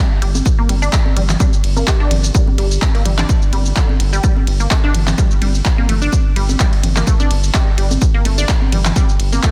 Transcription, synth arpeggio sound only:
0.22 G3
0.59 A#3
0.69 G3
0.82 D4
1.17 G3
1.40 G3
1.77 A#3
1.87 G3
2.00 D4
2.35 G3
2.58 G3
2.95 A#3
3.05 G3
3.18 D4
3.53 G3
3.76 D3
4.13 G3
4.24 G3
4.60 A#3
4.71 A3
4.84 D4
5.18 G3
5.42 G3
5.78 A#3
5.89 A3
6.02 D4
6.36 G3
6.60 G3
6.96 A#3
7.07 A3
7.20 D4
7.54 G3
7.78 G3
8.14 A#3
8.25 A3
8.38 D4
8.72 G3
8.96 G3
9.33 A#3
9.43 A3

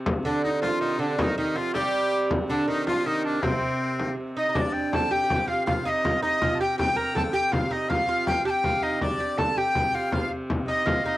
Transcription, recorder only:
0.25 D4
0.44 D#4
0.64 F4
1.00 D4
1.18 D#4
1.37 D#4
1.56 F4
1.74 G4 A4
2.49 D4
2.68 D#4
2.87 F4
3.06 D#4
3.25 D4
3.43 C4
4.38 D#5
4.57 D5 D#5
4.93 A5
5.12 G5
5.48 F5
5.67 F5
5.85 D#5 F5
6.23 D#5
6.61 G5
6.78 G5
6.96 A#5
7.16 A5
7.33 G5
7.52 F5
7.72 D#5
7.90 F5
8.27 G5
8.46 G5 A5
8.83 D#5
9.00 D5 D#5
9.38 A5
9.58 G5
9.95 F5
10.13 F5
10.69 D#5
11.05 D#5

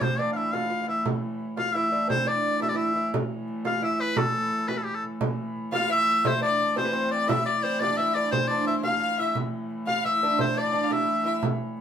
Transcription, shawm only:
0.03 C5
0.19 D5
0.33 E5 F5
0.54 F5
0.88 E5
1.58 F5
1.75 E5
2.10 C5
2.28 D5
2.62 E5
2.69 D5
2.76 E5
3.66 F5
3.84 E5
4.01 B4
4.17 A4
4.68 B4
4.77 A4
4.85 G4
4.95 A4
5.75 F5
5.92 E5
6.27 C5
6.42 D5
6.77 C5
7.12 D5
7.28 E5
7.45 D5
7.63 C5
7.80 D5
7.97 E5
8.14 D5
8.31 C5
8.48 D5
8.67 E5
8.84 F5
9.19 E5
9.88 F5
10.05 E5
10.40 C5
10.58 D5
10.92 E5

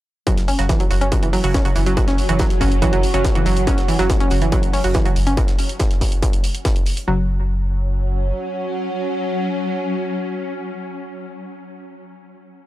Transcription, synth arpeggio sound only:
0.27 F#3
0.48 C#4
0.69 E3
0.80 F#3
1.01 C#4
1.23 E3
1.33 F#3
1.54 C#4
1.76 E3
1.86 F#3
2.08 C#4
2.29 E3
2.40 F#3
2.61 C#4
2.82 E3
2.93 F#3
3.14 C#4
3.35 E3
3.46 F#3
3.67 C#4
3.88 E3
3.99 F#3
4.20 C#4
4.42 E3
4.52 F#3
4.73 C#4
4.95 E3
5.05 F#3
5.27 C#4
7.08 F#3

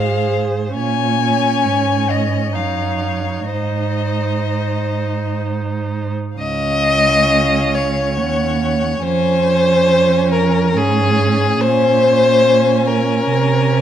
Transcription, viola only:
Already playing: G#4
0.77 C#4
2.53 D#4
3.50 D#4
6.38 C#4
9.02 C#4
10.75 C#4
11.60 C#4

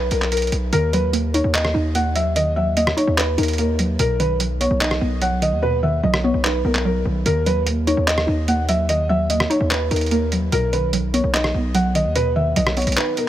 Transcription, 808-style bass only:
Already playing: B1
0.11 B1
0.52 B1
0.73 D#2
1.44 D#2
1.75 D#2
3.07 D#2
3.38 D#2
3.99 B1
4.71 B1
5.01 B1
5.52 D#2
6.03 B1
6.34 B1
6.65 B1
7.05 B1
7.26 D#2
7.97 D#2
8.28 D#2
9.61 D#2
9.91 D#2
10.52 B1
11.24 B1
11.54 B1
12.05 D#2
12.56 B1
12.87 B1

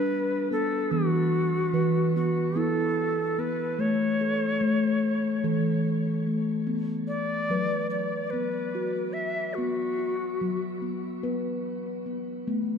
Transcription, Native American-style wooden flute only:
Already playing: B4
0.52 A4
0.92 F#4
2.16 F#4
2.58 A4
3.39 B4
3.80 C#5
7.08 D5
7.90 D5
8.30 B4
9.13 E5
9.54 F#4

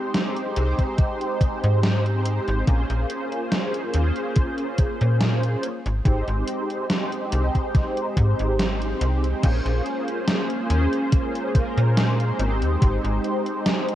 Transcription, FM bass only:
0.57 C2
1.64 G#2
2.48 G#1
2.68 A#1
2.90 A#1
3.94 D#2
5.01 A#2
5.86 G#1
6.05 G#1
6.28 G#1
7.33 C2
8.17 G#2
8.40 G#1
9.01 C2
9.44 A#1
9.66 A#1
10.70 D#2
11.77 A#2
12.39 G#1
12.62 D#2
12.82 G#1
13.04 G#1

